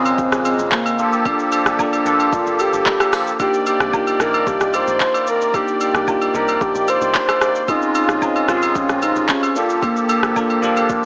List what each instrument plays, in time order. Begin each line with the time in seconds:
Already playing: log drum bass G#1, accordion A#2 C#3 G#3 A#3, tine electric piano C#3 C4 C#4 F4 G#4, soft synth lead C4
0.05 high agogo, shaker
0.18 log drum bass A#1, kick, shaker
0.32 log drum bass A#1, cross-stick, shaker
0.45 soft synth lead C4, high agogo, shaker
0.59 log drum bass G#1, shaker
0.72 soft synth lead A#3, kick, clap, shaker
0.86 high agogo, shaker
0.98 accordion F3 A#3 G4 A4, tine electric piano A#3 D4 F4 A4, shaker
1.13 shaker
1.25 soft synth lead D4, kick, high agogo, shaker
1.39 shaker
1.52 high agogo, shaker
1.66 log drum bass G1, cross-stick, shaker
1.78 tine electric piano A#3 D4 F4 A4, soft synth lead D4, kick, low woodblock, shaker
1.93 high agogo, shaker
2.05 log drum bass G1, tine electric piano A#3 D4 F4 A4, shaker
2.20 high agogo, shaker
2.33 log drum bass F1, soft synth lead F4, kick, shaker
2.46 log drum bass F1, shaker
2.59 soft synth lead G4, high agogo, shaker
2.73 log drum bass G1, shaker
2.86 kick, clap, shaker
3.00 cross-stick, high agogo, shaker
3.13 cross-stick, open hi-hat, shaker
3.27 shaker
3.39 accordion D#3 A#3 D5, tine electric piano A#3 D4 D#4 F4, soft synth lead G4, kick, high agogo, shaker
3.48 tine electric piano G4
3.54 shaker
3.66 soft synth lead G4, high agogo, shaker
3.80 log drum bass C2, cross-stick, shaker
3.93 tine electric piano A#3 D4 D#4 F4, kick, low woodblock, shaker
4.07 high agogo, shaker
4.19 log drum bass A#1, tine electric piano A#3 D4 D#4 A#4, soft synth lead A#4, cross-stick, shaker
4.34 high agogo, shaker
4.47 log drum bass C2, soft synth lead G4, kick, shaker
4.61 log drum bass C2, cross-stick, shaker
4.74 soft synth lead C5, high agogo, shaker
4.87 log drum bass A#1, shaker
5.00 kick, clap, shaker
5.14 high agogo, shaker
5.27 soft synth lead A#4, shaker
5.41 shaker
5.53 tine electric piano A#3 D4 D#4 G4, soft synth lead G4, kick, high agogo, shaker
5.68 shaker
5.81 soft synth lead G4, high agogo, shaker
5.95 log drum bass C2, cross-stick, shaker
6.07 tine electric piano A#3 D4 D#4 F4, kick, low woodblock, shaker
6.21 high agogo, shaker
6.34 log drum bass C2, tine electric piano A#3 D4 D#4 G4, soft synth lead A#4, shaker
6.48 high agogo, shaker
6.61 log drum bass A#1, soft synth lead G4, kick, shaker
6.75 log drum bass A#1, shaker
6.88 soft synth lead C5, high agogo, shaker
7.02 log drum bass C2, shaker
7.15 kick, clap, shaker
7.29 cross-stick, high agogo, shaker
7.41 cross-stick, shaker
7.55 shaker
7.68 accordion C#3 G#3 F4, tine electric piano C4 C#4 F4 G#4, soft synth lead D#4, kick, high agogo, shaker
7.82 shaker
7.95 soft synth lead D#4, high agogo, shaker
8.09 log drum bass A#1, cross-stick, shaker
8.21 tine electric piano C4 C#4 F4 G#4, kick, low woodblock, shaker
8.36 high agogo, shaker
8.48 log drum bass G#1, tine electric piano C4 C#4 F4 G4, soft synth lead F4, cross-stick, shaker
8.57 tine electric piano G#4
8.62 high agogo, shaker
8.75 log drum bass A#1, soft synth lead C#4, kick, shaker
8.89 log drum bass A#1, cross-stick, shaker
9.02 soft synth lead D#4, high agogo, shaker
9.16 log drum bass G#1, shaker
9.29 soft synth lead C#4, kick, clap, shaker
9.43 high agogo, shaker
9.55 accordion F3 A#3 G4 A4, tine electric piano A#3 D4 F4 A4, soft synth lead F4, shaker
9.70 shaker
9.83 soft synth lead A#3, kick, high agogo, shaker
9.96 shaker
10.09 high agogo, shaker
10.23 log drum bass G1, cross-stick, shaker
10.35 tine electric piano A#3 D4 F4 A4, kick, low woodblock, shaker
10.50 high agogo, shaker
10.62 log drum bass G1, tine electric piano A#3 D4 F4 G4, shaker
10.77 high agogo, shaker
10.90 log drum bass F1, kick, shaker